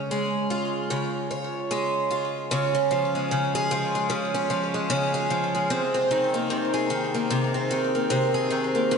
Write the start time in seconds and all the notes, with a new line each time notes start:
Already playing: C#3 G#3 C#4
0.11 G#3
0.50 F4
0.90 C#3
1.31 C#5
1.71 G#3
2.11 F4
2.51 C#3
2.75 C#4
2.91 F3
3.15 G#3
3.31 C#3
3.55 G#4
3.71 F3
3.95 G#3
4.10 C#3
4.34 C#4
4.50 F3
4.74 G#3
4.90 C#3
5.14 G#4
5.30 F3
5.55 G#3
5.70 C3
5.94 C4
6.11 D#3
6.34 A#3
6.50 C3
6.74 G#4
6.90 D#3
7.14 A#3
7.30 C3
7.54 C4
7.71 D#3
7.95 A#3
8.10 C3
8.34 G#4
8.50 D#3
8.75 A#3
8.91 F2